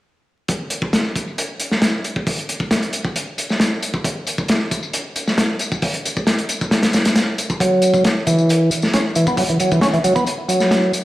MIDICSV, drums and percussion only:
0, 0, Header, 1, 2, 480
1, 0, Start_track
1, 0, Tempo, 444444
1, 530, Time_signature, 4, 2, 24, 8
1, 11923, End_track
2, 0, Start_track
2, 0, Title_t, "Drums"
2, 523, Note_on_c, 9, 42, 73
2, 527, Note_on_c, 9, 36, 106
2, 532, Note_on_c, 9, 54, 28
2, 631, Note_off_c, 9, 42, 0
2, 635, Note_off_c, 9, 36, 0
2, 640, Note_off_c, 9, 54, 0
2, 759, Note_on_c, 9, 42, 66
2, 772, Note_on_c, 9, 54, 66
2, 867, Note_off_c, 9, 42, 0
2, 880, Note_off_c, 9, 54, 0
2, 885, Note_on_c, 9, 36, 84
2, 895, Note_on_c, 9, 54, 41
2, 993, Note_off_c, 9, 36, 0
2, 1003, Note_off_c, 9, 54, 0
2, 1005, Note_on_c, 9, 38, 104
2, 1009, Note_on_c, 9, 42, 77
2, 1113, Note_off_c, 9, 38, 0
2, 1117, Note_off_c, 9, 42, 0
2, 1248, Note_on_c, 9, 36, 78
2, 1253, Note_on_c, 9, 42, 56
2, 1254, Note_on_c, 9, 54, 70
2, 1356, Note_off_c, 9, 36, 0
2, 1361, Note_off_c, 9, 42, 0
2, 1362, Note_off_c, 9, 54, 0
2, 1377, Note_on_c, 9, 54, 38
2, 1485, Note_off_c, 9, 54, 0
2, 1492, Note_on_c, 9, 42, 85
2, 1495, Note_on_c, 9, 54, 31
2, 1600, Note_off_c, 9, 42, 0
2, 1603, Note_off_c, 9, 54, 0
2, 1724, Note_on_c, 9, 42, 60
2, 1733, Note_on_c, 9, 54, 65
2, 1832, Note_off_c, 9, 42, 0
2, 1841, Note_off_c, 9, 54, 0
2, 1851, Note_on_c, 9, 38, 45
2, 1855, Note_on_c, 9, 54, 37
2, 1959, Note_off_c, 9, 38, 0
2, 1963, Note_off_c, 9, 54, 0
2, 1963, Note_on_c, 9, 38, 103
2, 1963, Note_on_c, 9, 42, 80
2, 2071, Note_off_c, 9, 38, 0
2, 2071, Note_off_c, 9, 42, 0
2, 2208, Note_on_c, 9, 42, 55
2, 2211, Note_on_c, 9, 54, 69
2, 2316, Note_off_c, 9, 42, 0
2, 2319, Note_off_c, 9, 54, 0
2, 2333, Note_on_c, 9, 36, 80
2, 2335, Note_on_c, 9, 54, 39
2, 2441, Note_off_c, 9, 36, 0
2, 2443, Note_off_c, 9, 54, 0
2, 2448, Note_on_c, 9, 46, 67
2, 2449, Note_on_c, 9, 36, 91
2, 2451, Note_on_c, 9, 54, 30
2, 2556, Note_off_c, 9, 46, 0
2, 2557, Note_off_c, 9, 36, 0
2, 2559, Note_off_c, 9, 54, 0
2, 2578, Note_on_c, 9, 42, 35
2, 2686, Note_off_c, 9, 42, 0
2, 2688, Note_on_c, 9, 54, 70
2, 2689, Note_on_c, 9, 42, 61
2, 2796, Note_off_c, 9, 54, 0
2, 2797, Note_off_c, 9, 42, 0
2, 2808, Note_on_c, 9, 36, 85
2, 2814, Note_on_c, 9, 54, 41
2, 2916, Note_off_c, 9, 36, 0
2, 2922, Note_off_c, 9, 54, 0
2, 2925, Note_on_c, 9, 38, 96
2, 2927, Note_on_c, 9, 42, 79
2, 2928, Note_on_c, 9, 54, 29
2, 3033, Note_off_c, 9, 38, 0
2, 3035, Note_off_c, 9, 42, 0
2, 3036, Note_off_c, 9, 54, 0
2, 3053, Note_on_c, 9, 42, 40
2, 3161, Note_off_c, 9, 42, 0
2, 3163, Note_on_c, 9, 42, 67
2, 3169, Note_on_c, 9, 54, 64
2, 3271, Note_off_c, 9, 42, 0
2, 3277, Note_off_c, 9, 54, 0
2, 3289, Note_on_c, 9, 36, 89
2, 3292, Note_on_c, 9, 54, 40
2, 3397, Note_off_c, 9, 36, 0
2, 3400, Note_off_c, 9, 54, 0
2, 3410, Note_on_c, 9, 42, 82
2, 3411, Note_on_c, 9, 54, 31
2, 3518, Note_off_c, 9, 42, 0
2, 3519, Note_off_c, 9, 54, 0
2, 3650, Note_on_c, 9, 54, 66
2, 3654, Note_on_c, 9, 42, 62
2, 3758, Note_off_c, 9, 54, 0
2, 3762, Note_off_c, 9, 42, 0
2, 3774, Note_on_c, 9, 54, 37
2, 3784, Note_on_c, 9, 38, 38
2, 3882, Note_off_c, 9, 54, 0
2, 3885, Note_off_c, 9, 38, 0
2, 3885, Note_on_c, 9, 38, 107
2, 3890, Note_on_c, 9, 54, 30
2, 3894, Note_on_c, 9, 42, 75
2, 3993, Note_off_c, 9, 38, 0
2, 3998, Note_off_c, 9, 54, 0
2, 4002, Note_off_c, 9, 42, 0
2, 4129, Note_on_c, 9, 54, 71
2, 4132, Note_on_c, 9, 42, 60
2, 4237, Note_off_c, 9, 54, 0
2, 4240, Note_off_c, 9, 42, 0
2, 4252, Note_on_c, 9, 36, 91
2, 4253, Note_on_c, 9, 54, 40
2, 4360, Note_off_c, 9, 36, 0
2, 4361, Note_off_c, 9, 54, 0
2, 4368, Note_on_c, 9, 36, 93
2, 4372, Note_on_c, 9, 42, 76
2, 4372, Note_on_c, 9, 54, 29
2, 4476, Note_off_c, 9, 36, 0
2, 4480, Note_off_c, 9, 42, 0
2, 4480, Note_off_c, 9, 54, 0
2, 4607, Note_on_c, 9, 54, 67
2, 4614, Note_on_c, 9, 42, 59
2, 4715, Note_off_c, 9, 54, 0
2, 4722, Note_off_c, 9, 42, 0
2, 4733, Note_on_c, 9, 36, 91
2, 4735, Note_on_c, 9, 54, 41
2, 4841, Note_off_c, 9, 36, 0
2, 4843, Note_off_c, 9, 54, 0
2, 4843, Note_on_c, 9, 42, 70
2, 4849, Note_on_c, 9, 54, 28
2, 4855, Note_on_c, 9, 38, 105
2, 4951, Note_off_c, 9, 42, 0
2, 4957, Note_off_c, 9, 54, 0
2, 4963, Note_off_c, 9, 38, 0
2, 5089, Note_on_c, 9, 54, 68
2, 5090, Note_on_c, 9, 36, 84
2, 5092, Note_on_c, 9, 42, 59
2, 5197, Note_off_c, 9, 54, 0
2, 5198, Note_off_c, 9, 36, 0
2, 5200, Note_off_c, 9, 42, 0
2, 5213, Note_on_c, 9, 54, 40
2, 5321, Note_off_c, 9, 54, 0
2, 5329, Note_on_c, 9, 42, 84
2, 5333, Note_on_c, 9, 54, 29
2, 5437, Note_off_c, 9, 42, 0
2, 5441, Note_off_c, 9, 54, 0
2, 5570, Note_on_c, 9, 42, 58
2, 5572, Note_on_c, 9, 54, 66
2, 5678, Note_off_c, 9, 42, 0
2, 5680, Note_off_c, 9, 54, 0
2, 5697, Note_on_c, 9, 38, 46
2, 5697, Note_on_c, 9, 54, 37
2, 5805, Note_off_c, 9, 38, 0
2, 5805, Note_off_c, 9, 54, 0
2, 5807, Note_on_c, 9, 38, 111
2, 5808, Note_on_c, 9, 42, 82
2, 5815, Note_on_c, 9, 54, 29
2, 5915, Note_off_c, 9, 38, 0
2, 5916, Note_off_c, 9, 42, 0
2, 5923, Note_off_c, 9, 54, 0
2, 6041, Note_on_c, 9, 42, 61
2, 6055, Note_on_c, 9, 54, 68
2, 6149, Note_off_c, 9, 42, 0
2, 6163, Note_off_c, 9, 54, 0
2, 6174, Note_on_c, 9, 36, 86
2, 6179, Note_on_c, 9, 54, 39
2, 6282, Note_off_c, 9, 36, 0
2, 6286, Note_on_c, 9, 46, 77
2, 6287, Note_off_c, 9, 54, 0
2, 6290, Note_on_c, 9, 36, 99
2, 6294, Note_on_c, 9, 54, 28
2, 6394, Note_off_c, 9, 46, 0
2, 6398, Note_off_c, 9, 36, 0
2, 6402, Note_off_c, 9, 54, 0
2, 6413, Note_on_c, 9, 42, 41
2, 6521, Note_off_c, 9, 42, 0
2, 6538, Note_on_c, 9, 54, 63
2, 6541, Note_on_c, 9, 42, 62
2, 6646, Note_off_c, 9, 54, 0
2, 6649, Note_off_c, 9, 42, 0
2, 6660, Note_on_c, 9, 36, 81
2, 6662, Note_on_c, 9, 54, 38
2, 6768, Note_off_c, 9, 36, 0
2, 6769, Note_on_c, 9, 38, 97
2, 6770, Note_off_c, 9, 54, 0
2, 6775, Note_on_c, 9, 42, 76
2, 6779, Note_on_c, 9, 54, 28
2, 6877, Note_off_c, 9, 38, 0
2, 6883, Note_off_c, 9, 42, 0
2, 6887, Note_off_c, 9, 54, 0
2, 6895, Note_on_c, 9, 42, 41
2, 7003, Note_off_c, 9, 42, 0
2, 7008, Note_on_c, 9, 42, 62
2, 7016, Note_on_c, 9, 54, 64
2, 7116, Note_off_c, 9, 42, 0
2, 7124, Note_off_c, 9, 54, 0
2, 7142, Note_on_c, 9, 36, 85
2, 7142, Note_on_c, 9, 54, 35
2, 7249, Note_on_c, 9, 38, 100
2, 7250, Note_off_c, 9, 36, 0
2, 7250, Note_off_c, 9, 54, 0
2, 7256, Note_on_c, 9, 54, 28
2, 7258, Note_on_c, 9, 42, 71
2, 7357, Note_off_c, 9, 38, 0
2, 7364, Note_off_c, 9, 54, 0
2, 7366, Note_off_c, 9, 42, 0
2, 7372, Note_on_c, 9, 38, 100
2, 7377, Note_on_c, 9, 42, 81
2, 7480, Note_off_c, 9, 38, 0
2, 7485, Note_off_c, 9, 42, 0
2, 7485, Note_on_c, 9, 42, 63
2, 7495, Note_on_c, 9, 54, 62
2, 7499, Note_on_c, 9, 38, 89
2, 7593, Note_off_c, 9, 42, 0
2, 7603, Note_off_c, 9, 54, 0
2, 7607, Note_off_c, 9, 38, 0
2, 7616, Note_on_c, 9, 42, 68
2, 7620, Note_on_c, 9, 54, 36
2, 7622, Note_on_c, 9, 38, 109
2, 7724, Note_off_c, 9, 42, 0
2, 7728, Note_off_c, 9, 38, 0
2, 7728, Note_off_c, 9, 54, 0
2, 7728, Note_on_c, 9, 38, 98
2, 7728, Note_on_c, 9, 42, 83
2, 7737, Note_on_c, 9, 54, 29
2, 7836, Note_off_c, 9, 38, 0
2, 7836, Note_off_c, 9, 42, 0
2, 7845, Note_off_c, 9, 54, 0
2, 7973, Note_on_c, 9, 42, 61
2, 7974, Note_on_c, 9, 54, 63
2, 8081, Note_off_c, 9, 42, 0
2, 8082, Note_off_c, 9, 54, 0
2, 8098, Note_on_c, 9, 36, 93
2, 8101, Note_on_c, 9, 54, 36
2, 8206, Note_off_c, 9, 36, 0
2, 8209, Note_off_c, 9, 54, 0
2, 8211, Note_on_c, 9, 36, 99
2, 8215, Note_on_c, 9, 54, 27
2, 8218, Note_on_c, 9, 42, 78
2, 8319, Note_off_c, 9, 36, 0
2, 8323, Note_off_c, 9, 54, 0
2, 8326, Note_off_c, 9, 42, 0
2, 8444, Note_on_c, 9, 42, 65
2, 8452, Note_on_c, 9, 54, 61
2, 8552, Note_off_c, 9, 42, 0
2, 8560, Note_off_c, 9, 54, 0
2, 8571, Note_on_c, 9, 36, 82
2, 8578, Note_on_c, 9, 54, 38
2, 8679, Note_off_c, 9, 36, 0
2, 8686, Note_off_c, 9, 54, 0
2, 8689, Note_on_c, 9, 42, 72
2, 8693, Note_on_c, 9, 38, 90
2, 8694, Note_on_c, 9, 54, 28
2, 8797, Note_off_c, 9, 42, 0
2, 8801, Note_off_c, 9, 38, 0
2, 8802, Note_off_c, 9, 54, 0
2, 8930, Note_on_c, 9, 42, 65
2, 8931, Note_on_c, 9, 36, 77
2, 8933, Note_on_c, 9, 54, 65
2, 9038, Note_off_c, 9, 42, 0
2, 9039, Note_off_c, 9, 36, 0
2, 9041, Note_off_c, 9, 54, 0
2, 9056, Note_on_c, 9, 54, 37
2, 9164, Note_off_c, 9, 54, 0
2, 9172, Note_on_c, 9, 54, 28
2, 9181, Note_on_c, 9, 42, 90
2, 9280, Note_off_c, 9, 54, 0
2, 9289, Note_off_c, 9, 42, 0
2, 9406, Note_on_c, 9, 54, 62
2, 9412, Note_on_c, 9, 42, 59
2, 9514, Note_off_c, 9, 54, 0
2, 9520, Note_off_c, 9, 42, 0
2, 9529, Note_on_c, 9, 54, 36
2, 9538, Note_on_c, 9, 38, 49
2, 9637, Note_off_c, 9, 54, 0
2, 9646, Note_off_c, 9, 38, 0
2, 9649, Note_on_c, 9, 54, 27
2, 9650, Note_on_c, 9, 42, 90
2, 9654, Note_on_c, 9, 38, 102
2, 9757, Note_off_c, 9, 54, 0
2, 9758, Note_off_c, 9, 42, 0
2, 9762, Note_off_c, 9, 38, 0
2, 9886, Note_on_c, 9, 54, 65
2, 9891, Note_on_c, 9, 42, 62
2, 9994, Note_off_c, 9, 54, 0
2, 9999, Note_off_c, 9, 42, 0
2, 10009, Note_on_c, 9, 36, 95
2, 10010, Note_on_c, 9, 54, 37
2, 10117, Note_off_c, 9, 36, 0
2, 10118, Note_off_c, 9, 54, 0
2, 10122, Note_on_c, 9, 36, 103
2, 10124, Note_on_c, 9, 46, 79
2, 10126, Note_on_c, 9, 54, 29
2, 10230, Note_off_c, 9, 36, 0
2, 10232, Note_off_c, 9, 46, 0
2, 10234, Note_off_c, 9, 54, 0
2, 10247, Note_on_c, 9, 42, 43
2, 10355, Note_off_c, 9, 42, 0
2, 10364, Note_on_c, 9, 42, 70
2, 10368, Note_on_c, 9, 54, 65
2, 10472, Note_off_c, 9, 42, 0
2, 10476, Note_off_c, 9, 54, 0
2, 10492, Note_on_c, 9, 54, 39
2, 10495, Note_on_c, 9, 36, 91
2, 10599, Note_on_c, 9, 38, 103
2, 10600, Note_off_c, 9, 54, 0
2, 10603, Note_off_c, 9, 36, 0
2, 10604, Note_on_c, 9, 54, 29
2, 10613, Note_on_c, 9, 42, 78
2, 10707, Note_off_c, 9, 38, 0
2, 10712, Note_off_c, 9, 54, 0
2, 10721, Note_off_c, 9, 42, 0
2, 10732, Note_on_c, 9, 42, 40
2, 10840, Note_off_c, 9, 42, 0
2, 10844, Note_on_c, 9, 54, 65
2, 10846, Note_on_c, 9, 42, 60
2, 10952, Note_off_c, 9, 54, 0
2, 10954, Note_off_c, 9, 42, 0
2, 10969, Note_on_c, 9, 54, 35
2, 10972, Note_on_c, 9, 36, 90
2, 11077, Note_off_c, 9, 54, 0
2, 11080, Note_off_c, 9, 36, 0
2, 11085, Note_on_c, 9, 54, 29
2, 11092, Note_on_c, 9, 42, 75
2, 11193, Note_off_c, 9, 54, 0
2, 11200, Note_off_c, 9, 42, 0
2, 11328, Note_on_c, 9, 54, 61
2, 11335, Note_on_c, 9, 42, 61
2, 11436, Note_off_c, 9, 54, 0
2, 11443, Note_off_c, 9, 42, 0
2, 11450, Note_on_c, 9, 38, 39
2, 11451, Note_on_c, 9, 54, 35
2, 11558, Note_off_c, 9, 38, 0
2, 11559, Note_off_c, 9, 54, 0
2, 11567, Note_on_c, 9, 38, 101
2, 11571, Note_on_c, 9, 42, 74
2, 11572, Note_on_c, 9, 54, 28
2, 11675, Note_off_c, 9, 38, 0
2, 11679, Note_off_c, 9, 42, 0
2, 11680, Note_off_c, 9, 54, 0
2, 11808, Note_on_c, 9, 54, 62
2, 11813, Note_on_c, 9, 42, 63
2, 11916, Note_off_c, 9, 54, 0
2, 11921, Note_off_c, 9, 42, 0
2, 11923, End_track
0, 0, End_of_file